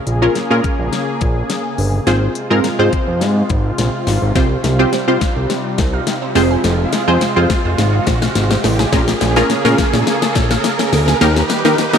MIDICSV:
0, 0, Header, 1, 7, 480
1, 0, Start_track
1, 0, Key_signature, -4, "minor"
1, 0, Tempo, 571429
1, 1739, Time_signature, 4, 2, 24, 8
1, 10064, End_track
2, 0, Start_track
2, 0, Title_t, "Synth stab"
2, 0, Program_c, 0, 62
2, 183, Note_on_c, 0, 61, 87
2, 185, Note_on_c, 0, 65, 78
2, 186, Note_on_c, 0, 68, 79
2, 187, Note_on_c, 0, 70, 98
2, 312, Note_off_c, 0, 61, 0
2, 313, Note_off_c, 0, 65, 0
2, 313, Note_off_c, 0, 68, 0
2, 314, Note_off_c, 0, 70, 0
2, 423, Note_on_c, 0, 61, 85
2, 424, Note_on_c, 0, 65, 80
2, 426, Note_on_c, 0, 68, 78
2, 427, Note_on_c, 0, 70, 101
2, 957, Note_off_c, 0, 61, 0
2, 958, Note_off_c, 0, 65, 0
2, 959, Note_off_c, 0, 68, 0
2, 959, Note_off_c, 0, 70, 0
2, 1735, Note_on_c, 0, 60, 85
2, 1737, Note_on_c, 0, 65, 78
2, 1738, Note_on_c, 0, 68, 83
2, 1739, Note_on_c, 0, 72, 97
2, 1940, Note_off_c, 0, 60, 0
2, 1941, Note_off_c, 0, 65, 0
2, 1942, Note_off_c, 0, 68, 0
2, 1942, Note_off_c, 0, 72, 0
2, 2102, Note_on_c, 0, 60, 89
2, 2104, Note_on_c, 0, 65, 85
2, 2106, Note_on_c, 0, 68, 77
2, 2107, Note_on_c, 0, 70, 100
2, 2232, Note_off_c, 0, 60, 0
2, 2233, Note_off_c, 0, 65, 0
2, 2233, Note_off_c, 0, 68, 0
2, 2234, Note_off_c, 0, 70, 0
2, 2343, Note_on_c, 0, 60, 86
2, 2344, Note_on_c, 0, 65, 76
2, 2345, Note_on_c, 0, 68, 78
2, 2347, Note_on_c, 0, 72, 98
2, 2877, Note_off_c, 0, 60, 0
2, 2878, Note_off_c, 0, 65, 0
2, 2879, Note_off_c, 0, 68, 0
2, 2879, Note_off_c, 0, 72, 0
2, 3656, Note_on_c, 0, 60, 94
2, 3657, Note_on_c, 0, 65, 83
2, 3659, Note_on_c, 0, 67, 81
2, 3660, Note_on_c, 0, 72, 100
2, 3861, Note_off_c, 0, 60, 0
2, 3861, Note_off_c, 0, 65, 0
2, 3862, Note_off_c, 0, 67, 0
2, 3863, Note_off_c, 0, 72, 0
2, 4023, Note_on_c, 0, 60, 88
2, 4025, Note_on_c, 0, 65, 81
2, 4026, Note_on_c, 0, 67, 84
2, 4028, Note_on_c, 0, 72, 96
2, 4152, Note_off_c, 0, 60, 0
2, 4153, Note_off_c, 0, 65, 0
2, 4154, Note_off_c, 0, 67, 0
2, 4154, Note_off_c, 0, 72, 0
2, 4263, Note_on_c, 0, 60, 88
2, 4265, Note_on_c, 0, 65, 81
2, 4266, Note_on_c, 0, 67, 81
2, 4267, Note_on_c, 0, 72, 101
2, 4797, Note_off_c, 0, 60, 0
2, 4798, Note_off_c, 0, 65, 0
2, 4799, Note_off_c, 0, 67, 0
2, 4799, Note_off_c, 0, 72, 0
2, 5335, Note_on_c, 0, 60, 93
2, 5337, Note_on_c, 0, 65, 84
2, 5338, Note_on_c, 0, 68, 87
2, 5340, Note_on_c, 0, 72, 105
2, 5817, Note_off_c, 0, 60, 0
2, 5818, Note_off_c, 0, 65, 0
2, 5818, Note_off_c, 0, 68, 0
2, 5819, Note_off_c, 0, 72, 0
2, 5943, Note_on_c, 0, 60, 89
2, 5944, Note_on_c, 0, 65, 82
2, 5946, Note_on_c, 0, 68, 80
2, 5947, Note_on_c, 0, 72, 96
2, 6072, Note_off_c, 0, 60, 0
2, 6073, Note_off_c, 0, 65, 0
2, 6074, Note_off_c, 0, 68, 0
2, 6074, Note_off_c, 0, 72, 0
2, 6183, Note_on_c, 0, 60, 86
2, 6185, Note_on_c, 0, 65, 83
2, 6186, Note_on_c, 0, 68, 80
2, 6188, Note_on_c, 0, 72, 95
2, 6718, Note_off_c, 0, 60, 0
2, 6718, Note_off_c, 0, 65, 0
2, 6719, Note_off_c, 0, 68, 0
2, 6720, Note_off_c, 0, 72, 0
2, 7496, Note_on_c, 0, 61, 88
2, 7498, Note_on_c, 0, 65, 87
2, 7499, Note_on_c, 0, 68, 82
2, 7500, Note_on_c, 0, 70, 100
2, 7701, Note_off_c, 0, 61, 0
2, 7701, Note_off_c, 0, 65, 0
2, 7702, Note_off_c, 0, 68, 0
2, 7703, Note_off_c, 0, 70, 0
2, 7863, Note_on_c, 0, 61, 89
2, 7865, Note_on_c, 0, 65, 85
2, 7866, Note_on_c, 0, 68, 85
2, 7868, Note_on_c, 0, 70, 101
2, 7992, Note_off_c, 0, 61, 0
2, 7993, Note_off_c, 0, 65, 0
2, 7994, Note_off_c, 0, 68, 0
2, 7994, Note_off_c, 0, 70, 0
2, 8103, Note_on_c, 0, 61, 91
2, 8105, Note_on_c, 0, 65, 83
2, 8106, Note_on_c, 0, 68, 80
2, 8107, Note_on_c, 0, 70, 100
2, 8637, Note_off_c, 0, 61, 0
2, 8638, Note_off_c, 0, 65, 0
2, 8639, Note_off_c, 0, 68, 0
2, 8639, Note_off_c, 0, 70, 0
2, 9416, Note_on_c, 0, 58, 94
2, 9417, Note_on_c, 0, 63, 81
2, 9419, Note_on_c, 0, 67, 82
2, 9420, Note_on_c, 0, 70, 104
2, 9621, Note_off_c, 0, 58, 0
2, 9621, Note_off_c, 0, 63, 0
2, 9622, Note_off_c, 0, 67, 0
2, 9623, Note_off_c, 0, 70, 0
2, 9783, Note_on_c, 0, 58, 90
2, 9785, Note_on_c, 0, 63, 83
2, 9786, Note_on_c, 0, 67, 81
2, 9787, Note_on_c, 0, 70, 100
2, 9912, Note_off_c, 0, 58, 0
2, 9913, Note_off_c, 0, 63, 0
2, 9913, Note_off_c, 0, 67, 0
2, 9914, Note_off_c, 0, 70, 0
2, 10023, Note_on_c, 0, 58, 89
2, 10024, Note_on_c, 0, 63, 84
2, 10025, Note_on_c, 0, 67, 82
2, 10027, Note_on_c, 0, 70, 104
2, 10064, Note_off_c, 0, 58, 0
2, 10064, Note_off_c, 0, 63, 0
2, 10064, Note_off_c, 0, 67, 0
2, 10064, Note_off_c, 0, 70, 0
2, 10064, End_track
3, 0, Start_track
3, 0, Title_t, "Synth pluck"
3, 0, Program_c, 1, 84
3, 3658, Note_on_c, 1, 53, 86
3, 3766, Note_off_c, 1, 53, 0
3, 3898, Note_on_c, 1, 55, 80
3, 4006, Note_off_c, 1, 55, 0
3, 4025, Note_on_c, 1, 67, 82
3, 4121, Note_off_c, 1, 67, 0
3, 4138, Note_on_c, 1, 60, 92
3, 4246, Note_off_c, 1, 60, 0
3, 4265, Note_on_c, 1, 77, 84
3, 4361, Note_off_c, 1, 77, 0
3, 4378, Note_on_c, 1, 53, 81
3, 4486, Note_off_c, 1, 53, 0
3, 4505, Note_on_c, 1, 60, 76
3, 4601, Note_off_c, 1, 60, 0
3, 4858, Note_on_c, 1, 60, 85
3, 4966, Note_off_c, 1, 60, 0
3, 4986, Note_on_c, 1, 77, 78
3, 5081, Note_off_c, 1, 77, 0
3, 5226, Note_on_c, 1, 60, 77
3, 5321, Note_off_c, 1, 60, 0
3, 5338, Note_on_c, 1, 56, 83
3, 5446, Note_off_c, 1, 56, 0
3, 5466, Note_on_c, 1, 68, 81
3, 5561, Note_off_c, 1, 68, 0
3, 5578, Note_on_c, 1, 53, 87
3, 5686, Note_off_c, 1, 53, 0
3, 5818, Note_on_c, 1, 56, 83
3, 5926, Note_off_c, 1, 56, 0
3, 5945, Note_on_c, 1, 68, 82
3, 6041, Note_off_c, 1, 68, 0
3, 6059, Note_on_c, 1, 60, 89
3, 6166, Note_off_c, 1, 60, 0
3, 6186, Note_on_c, 1, 77, 85
3, 6281, Note_off_c, 1, 77, 0
3, 6299, Note_on_c, 1, 53, 79
3, 6406, Note_off_c, 1, 53, 0
3, 6426, Note_on_c, 1, 60, 76
3, 6521, Note_off_c, 1, 60, 0
3, 6779, Note_on_c, 1, 60, 83
3, 6886, Note_off_c, 1, 60, 0
3, 6906, Note_on_c, 1, 77, 81
3, 7001, Note_off_c, 1, 77, 0
3, 7146, Note_on_c, 1, 60, 80
3, 7241, Note_off_c, 1, 60, 0
3, 7259, Note_on_c, 1, 56, 84
3, 7366, Note_off_c, 1, 56, 0
3, 7386, Note_on_c, 1, 68, 82
3, 7481, Note_off_c, 1, 68, 0
3, 7498, Note_on_c, 1, 53, 97
3, 7606, Note_off_c, 1, 53, 0
3, 7739, Note_on_c, 1, 58, 84
3, 7846, Note_off_c, 1, 58, 0
3, 7866, Note_on_c, 1, 68, 83
3, 7961, Note_off_c, 1, 68, 0
3, 7979, Note_on_c, 1, 61, 87
3, 8086, Note_off_c, 1, 61, 0
3, 8105, Note_on_c, 1, 77, 83
3, 8201, Note_off_c, 1, 77, 0
3, 8218, Note_on_c, 1, 53, 82
3, 8326, Note_off_c, 1, 53, 0
3, 8346, Note_on_c, 1, 61, 76
3, 8441, Note_off_c, 1, 61, 0
3, 8699, Note_on_c, 1, 61, 81
3, 8806, Note_off_c, 1, 61, 0
3, 8826, Note_on_c, 1, 77, 85
3, 8921, Note_off_c, 1, 77, 0
3, 9066, Note_on_c, 1, 61, 75
3, 9161, Note_off_c, 1, 61, 0
3, 9179, Note_on_c, 1, 58, 86
3, 9286, Note_off_c, 1, 58, 0
3, 9306, Note_on_c, 1, 68, 86
3, 9401, Note_off_c, 1, 68, 0
3, 9418, Note_on_c, 1, 51, 91
3, 9526, Note_off_c, 1, 51, 0
3, 9658, Note_on_c, 1, 55, 83
3, 9766, Note_off_c, 1, 55, 0
3, 9785, Note_on_c, 1, 67, 80
3, 9881, Note_off_c, 1, 67, 0
3, 9898, Note_on_c, 1, 58, 93
3, 10006, Note_off_c, 1, 58, 0
3, 10025, Note_on_c, 1, 75, 86
3, 10064, Note_off_c, 1, 75, 0
3, 10064, End_track
4, 0, Start_track
4, 0, Title_t, "Analog synth pad"
4, 0, Program_c, 2, 89
4, 0, Note_on_c, 2, 49, 81
4, 0, Note_on_c, 2, 58, 74
4, 0, Note_on_c, 2, 68, 95
4, 1719, Note_off_c, 2, 49, 0
4, 1719, Note_off_c, 2, 58, 0
4, 1719, Note_off_c, 2, 68, 0
4, 1738, Note_on_c, 2, 48, 81
4, 1738, Note_on_c, 2, 56, 77
4, 1738, Note_on_c, 2, 65, 94
4, 3639, Note_off_c, 2, 56, 0
4, 3659, Note_on_c, 2, 55, 74
4, 5304, Note_off_c, 2, 65, 0
4, 5322, Note_off_c, 2, 55, 0
4, 5338, Note_on_c, 2, 56, 77
4, 5338, Note_on_c, 2, 65, 93
4, 7464, Note_off_c, 2, 48, 0
4, 7476, Note_off_c, 2, 65, 0
4, 7477, Note_off_c, 2, 56, 0
4, 7499, Note_on_c, 2, 49, 85
4, 7499, Note_on_c, 2, 58, 78
4, 7499, Note_on_c, 2, 68, 92
4, 9399, Note_off_c, 2, 49, 0
4, 9400, Note_off_c, 2, 68, 0
4, 9418, Note_on_c, 2, 67, 90
4, 9419, Note_on_c, 2, 51, 81
4, 10064, Note_off_c, 2, 51, 0
4, 10064, Note_off_c, 2, 58, 0
4, 10064, Note_off_c, 2, 67, 0
4, 10064, End_track
5, 0, Start_track
5, 0, Title_t, "Analog synth bass"
5, 0, Program_c, 3, 38
5, 59, Note_on_c, 3, 34, 102
5, 240, Note_off_c, 3, 34, 0
5, 298, Note_on_c, 3, 46, 50
5, 349, Note_off_c, 3, 46, 0
5, 426, Note_on_c, 3, 46, 96
5, 511, Note_off_c, 3, 46, 0
5, 666, Note_on_c, 3, 34, 101
5, 751, Note_off_c, 3, 34, 0
5, 1020, Note_on_c, 3, 34, 90
5, 1201, Note_off_c, 3, 34, 0
5, 1498, Note_on_c, 3, 31, 96
5, 1680, Note_off_c, 3, 31, 0
5, 1738, Note_on_c, 3, 32, 107
5, 1920, Note_off_c, 3, 32, 0
5, 2106, Note_on_c, 3, 44, 101
5, 2191, Note_off_c, 3, 44, 0
5, 2219, Note_on_c, 3, 44, 51
5, 2269, Note_off_c, 3, 44, 0
5, 2345, Note_on_c, 3, 44, 100
5, 2431, Note_off_c, 3, 44, 0
5, 2585, Note_on_c, 3, 41, 96
5, 2698, Note_on_c, 3, 44, 106
5, 2711, Note_off_c, 3, 41, 0
5, 2880, Note_off_c, 3, 44, 0
5, 2941, Note_on_c, 3, 32, 106
5, 3122, Note_off_c, 3, 32, 0
5, 3178, Note_on_c, 3, 34, 98
5, 3275, Note_off_c, 3, 34, 0
5, 3418, Note_on_c, 3, 32, 90
5, 3515, Note_off_c, 3, 32, 0
5, 3545, Note_on_c, 3, 32, 94
5, 3631, Note_off_c, 3, 32, 0
5, 3658, Note_on_c, 3, 36, 106
5, 3840, Note_off_c, 3, 36, 0
5, 3898, Note_on_c, 3, 36, 110
5, 4080, Note_off_c, 3, 36, 0
5, 4138, Note_on_c, 3, 48, 50
5, 4189, Note_off_c, 3, 48, 0
5, 4265, Note_on_c, 3, 48, 92
5, 4351, Note_off_c, 3, 48, 0
5, 4505, Note_on_c, 3, 36, 101
5, 4591, Note_off_c, 3, 36, 0
5, 4861, Note_on_c, 3, 36, 96
5, 5042, Note_off_c, 3, 36, 0
5, 5338, Note_on_c, 3, 29, 100
5, 5520, Note_off_c, 3, 29, 0
5, 5578, Note_on_c, 3, 29, 106
5, 5760, Note_off_c, 3, 29, 0
5, 5946, Note_on_c, 3, 41, 94
5, 6031, Note_off_c, 3, 41, 0
5, 6059, Note_on_c, 3, 41, 51
5, 6110, Note_off_c, 3, 41, 0
5, 6186, Note_on_c, 3, 41, 105
5, 6271, Note_off_c, 3, 41, 0
5, 6426, Note_on_c, 3, 29, 96
5, 6511, Note_off_c, 3, 29, 0
5, 6538, Note_on_c, 3, 32, 102
5, 6720, Note_off_c, 3, 32, 0
5, 6781, Note_on_c, 3, 34, 94
5, 6962, Note_off_c, 3, 34, 0
5, 7018, Note_on_c, 3, 32, 97
5, 7200, Note_off_c, 3, 32, 0
5, 7258, Note_on_c, 3, 33, 98
5, 7440, Note_off_c, 3, 33, 0
5, 7498, Note_on_c, 3, 34, 104
5, 7680, Note_off_c, 3, 34, 0
5, 7738, Note_on_c, 3, 34, 109
5, 7920, Note_off_c, 3, 34, 0
5, 7978, Note_on_c, 3, 46, 52
5, 8029, Note_off_c, 3, 46, 0
5, 8105, Note_on_c, 3, 46, 96
5, 8191, Note_off_c, 3, 46, 0
5, 8345, Note_on_c, 3, 34, 102
5, 8431, Note_off_c, 3, 34, 0
5, 8701, Note_on_c, 3, 34, 107
5, 8882, Note_off_c, 3, 34, 0
5, 9177, Note_on_c, 3, 38, 98
5, 9360, Note_off_c, 3, 38, 0
5, 9417, Note_on_c, 3, 39, 108
5, 9600, Note_off_c, 3, 39, 0
5, 9785, Note_on_c, 3, 51, 87
5, 9871, Note_off_c, 3, 51, 0
5, 9898, Note_on_c, 3, 51, 53
5, 9949, Note_off_c, 3, 51, 0
5, 10025, Note_on_c, 3, 51, 99
5, 10064, Note_off_c, 3, 51, 0
5, 10064, End_track
6, 0, Start_track
6, 0, Title_t, "Riser"
6, 0, Program_c, 4, 103
6, 0, Note_on_c, 4, 60, 78
6, 10064, Note_off_c, 4, 60, 0
6, 10064, End_track
7, 0, Start_track
7, 0, Title_t, "Drums"
7, 57, Note_on_c, 9, 42, 85
7, 141, Note_off_c, 9, 42, 0
7, 297, Note_on_c, 9, 42, 88
7, 298, Note_on_c, 9, 38, 70
7, 381, Note_off_c, 9, 42, 0
7, 382, Note_off_c, 9, 38, 0
7, 538, Note_on_c, 9, 42, 60
7, 540, Note_on_c, 9, 36, 91
7, 622, Note_off_c, 9, 42, 0
7, 624, Note_off_c, 9, 36, 0
7, 778, Note_on_c, 9, 38, 70
7, 779, Note_on_c, 9, 42, 78
7, 862, Note_off_c, 9, 38, 0
7, 863, Note_off_c, 9, 42, 0
7, 1016, Note_on_c, 9, 42, 64
7, 1020, Note_on_c, 9, 36, 92
7, 1100, Note_off_c, 9, 42, 0
7, 1104, Note_off_c, 9, 36, 0
7, 1257, Note_on_c, 9, 42, 103
7, 1258, Note_on_c, 9, 38, 82
7, 1341, Note_off_c, 9, 42, 0
7, 1342, Note_off_c, 9, 38, 0
7, 1498, Note_on_c, 9, 46, 77
7, 1582, Note_off_c, 9, 46, 0
7, 1738, Note_on_c, 9, 38, 81
7, 1738, Note_on_c, 9, 42, 81
7, 1822, Note_off_c, 9, 38, 0
7, 1822, Note_off_c, 9, 42, 0
7, 1977, Note_on_c, 9, 42, 90
7, 2061, Note_off_c, 9, 42, 0
7, 2218, Note_on_c, 9, 42, 91
7, 2219, Note_on_c, 9, 38, 78
7, 2302, Note_off_c, 9, 42, 0
7, 2303, Note_off_c, 9, 38, 0
7, 2459, Note_on_c, 9, 42, 64
7, 2460, Note_on_c, 9, 36, 91
7, 2543, Note_off_c, 9, 42, 0
7, 2544, Note_off_c, 9, 36, 0
7, 2698, Note_on_c, 9, 38, 77
7, 2699, Note_on_c, 9, 42, 80
7, 2782, Note_off_c, 9, 38, 0
7, 2783, Note_off_c, 9, 42, 0
7, 2936, Note_on_c, 9, 42, 63
7, 2941, Note_on_c, 9, 36, 90
7, 3020, Note_off_c, 9, 42, 0
7, 3025, Note_off_c, 9, 36, 0
7, 3178, Note_on_c, 9, 42, 105
7, 3179, Note_on_c, 9, 38, 92
7, 3262, Note_off_c, 9, 42, 0
7, 3263, Note_off_c, 9, 38, 0
7, 3418, Note_on_c, 9, 38, 81
7, 3418, Note_on_c, 9, 46, 74
7, 3502, Note_off_c, 9, 38, 0
7, 3502, Note_off_c, 9, 46, 0
7, 3658, Note_on_c, 9, 36, 120
7, 3658, Note_on_c, 9, 38, 86
7, 3658, Note_on_c, 9, 42, 80
7, 3742, Note_off_c, 9, 36, 0
7, 3742, Note_off_c, 9, 38, 0
7, 3742, Note_off_c, 9, 42, 0
7, 3897, Note_on_c, 9, 42, 89
7, 3899, Note_on_c, 9, 38, 91
7, 3981, Note_off_c, 9, 42, 0
7, 3983, Note_off_c, 9, 38, 0
7, 4139, Note_on_c, 9, 38, 89
7, 4139, Note_on_c, 9, 42, 85
7, 4223, Note_off_c, 9, 38, 0
7, 4223, Note_off_c, 9, 42, 0
7, 4378, Note_on_c, 9, 42, 64
7, 4379, Note_on_c, 9, 38, 87
7, 4380, Note_on_c, 9, 36, 94
7, 4462, Note_off_c, 9, 42, 0
7, 4463, Note_off_c, 9, 38, 0
7, 4464, Note_off_c, 9, 36, 0
7, 4619, Note_on_c, 9, 38, 90
7, 4620, Note_on_c, 9, 42, 80
7, 4703, Note_off_c, 9, 38, 0
7, 4704, Note_off_c, 9, 42, 0
7, 4857, Note_on_c, 9, 42, 65
7, 4859, Note_on_c, 9, 38, 91
7, 4861, Note_on_c, 9, 36, 92
7, 4941, Note_off_c, 9, 42, 0
7, 4943, Note_off_c, 9, 38, 0
7, 4945, Note_off_c, 9, 36, 0
7, 5098, Note_on_c, 9, 38, 98
7, 5098, Note_on_c, 9, 42, 102
7, 5182, Note_off_c, 9, 38, 0
7, 5182, Note_off_c, 9, 42, 0
7, 5338, Note_on_c, 9, 38, 92
7, 5338, Note_on_c, 9, 46, 76
7, 5422, Note_off_c, 9, 38, 0
7, 5422, Note_off_c, 9, 46, 0
7, 5578, Note_on_c, 9, 38, 97
7, 5578, Note_on_c, 9, 42, 85
7, 5662, Note_off_c, 9, 38, 0
7, 5662, Note_off_c, 9, 42, 0
7, 5817, Note_on_c, 9, 42, 91
7, 5819, Note_on_c, 9, 38, 102
7, 5901, Note_off_c, 9, 42, 0
7, 5903, Note_off_c, 9, 38, 0
7, 6058, Note_on_c, 9, 42, 88
7, 6059, Note_on_c, 9, 38, 93
7, 6142, Note_off_c, 9, 42, 0
7, 6143, Note_off_c, 9, 38, 0
7, 6298, Note_on_c, 9, 38, 92
7, 6298, Note_on_c, 9, 42, 64
7, 6300, Note_on_c, 9, 36, 96
7, 6382, Note_off_c, 9, 38, 0
7, 6382, Note_off_c, 9, 42, 0
7, 6384, Note_off_c, 9, 36, 0
7, 6538, Note_on_c, 9, 38, 100
7, 6539, Note_on_c, 9, 42, 82
7, 6622, Note_off_c, 9, 38, 0
7, 6623, Note_off_c, 9, 42, 0
7, 6776, Note_on_c, 9, 42, 66
7, 6778, Note_on_c, 9, 38, 98
7, 6781, Note_on_c, 9, 36, 92
7, 6860, Note_off_c, 9, 42, 0
7, 6862, Note_off_c, 9, 38, 0
7, 6865, Note_off_c, 9, 36, 0
7, 6905, Note_on_c, 9, 38, 105
7, 6989, Note_off_c, 9, 38, 0
7, 7018, Note_on_c, 9, 38, 105
7, 7018, Note_on_c, 9, 42, 103
7, 7102, Note_off_c, 9, 38, 0
7, 7102, Note_off_c, 9, 42, 0
7, 7145, Note_on_c, 9, 38, 104
7, 7229, Note_off_c, 9, 38, 0
7, 7258, Note_on_c, 9, 38, 103
7, 7258, Note_on_c, 9, 46, 75
7, 7342, Note_off_c, 9, 38, 0
7, 7342, Note_off_c, 9, 46, 0
7, 7386, Note_on_c, 9, 38, 99
7, 7470, Note_off_c, 9, 38, 0
7, 7498, Note_on_c, 9, 36, 119
7, 7498, Note_on_c, 9, 38, 108
7, 7498, Note_on_c, 9, 42, 86
7, 7582, Note_off_c, 9, 36, 0
7, 7582, Note_off_c, 9, 38, 0
7, 7582, Note_off_c, 9, 42, 0
7, 7625, Note_on_c, 9, 38, 106
7, 7709, Note_off_c, 9, 38, 0
7, 7736, Note_on_c, 9, 42, 93
7, 7738, Note_on_c, 9, 38, 105
7, 7820, Note_off_c, 9, 42, 0
7, 7822, Note_off_c, 9, 38, 0
7, 7865, Note_on_c, 9, 38, 109
7, 7949, Note_off_c, 9, 38, 0
7, 7978, Note_on_c, 9, 38, 105
7, 7978, Note_on_c, 9, 42, 88
7, 8062, Note_off_c, 9, 38, 0
7, 8062, Note_off_c, 9, 42, 0
7, 8105, Note_on_c, 9, 38, 109
7, 8189, Note_off_c, 9, 38, 0
7, 8218, Note_on_c, 9, 38, 106
7, 8218, Note_on_c, 9, 42, 63
7, 8220, Note_on_c, 9, 36, 97
7, 8302, Note_off_c, 9, 38, 0
7, 8302, Note_off_c, 9, 42, 0
7, 8304, Note_off_c, 9, 36, 0
7, 8345, Note_on_c, 9, 38, 108
7, 8429, Note_off_c, 9, 38, 0
7, 8459, Note_on_c, 9, 38, 109
7, 8460, Note_on_c, 9, 42, 85
7, 8543, Note_off_c, 9, 38, 0
7, 8544, Note_off_c, 9, 42, 0
7, 8586, Note_on_c, 9, 38, 109
7, 8670, Note_off_c, 9, 38, 0
7, 8696, Note_on_c, 9, 42, 64
7, 8699, Note_on_c, 9, 38, 108
7, 8701, Note_on_c, 9, 36, 91
7, 8780, Note_off_c, 9, 42, 0
7, 8783, Note_off_c, 9, 38, 0
7, 8785, Note_off_c, 9, 36, 0
7, 8826, Note_on_c, 9, 38, 120
7, 8910, Note_off_c, 9, 38, 0
7, 8938, Note_on_c, 9, 42, 110
7, 8939, Note_on_c, 9, 38, 117
7, 9022, Note_off_c, 9, 42, 0
7, 9023, Note_off_c, 9, 38, 0
7, 9066, Note_on_c, 9, 38, 108
7, 9150, Note_off_c, 9, 38, 0
7, 9178, Note_on_c, 9, 46, 80
7, 9179, Note_on_c, 9, 38, 108
7, 9262, Note_off_c, 9, 46, 0
7, 9263, Note_off_c, 9, 38, 0
7, 9306, Note_on_c, 9, 38, 114
7, 9390, Note_off_c, 9, 38, 0
7, 9418, Note_on_c, 9, 38, 116
7, 9418, Note_on_c, 9, 42, 88
7, 9502, Note_off_c, 9, 38, 0
7, 9502, Note_off_c, 9, 42, 0
7, 9546, Note_on_c, 9, 38, 113
7, 9630, Note_off_c, 9, 38, 0
7, 9656, Note_on_c, 9, 42, 89
7, 9658, Note_on_c, 9, 38, 121
7, 9740, Note_off_c, 9, 42, 0
7, 9742, Note_off_c, 9, 38, 0
7, 9785, Note_on_c, 9, 38, 116
7, 9869, Note_off_c, 9, 38, 0
7, 9898, Note_on_c, 9, 38, 117
7, 9898, Note_on_c, 9, 42, 90
7, 9982, Note_off_c, 9, 38, 0
7, 9982, Note_off_c, 9, 42, 0
7, 10025, Note_on_c, 9, 38, 122
7, 10064, Note_off_c, 9, 38, 0
7, 10064, End_track
0, 0, End_of_file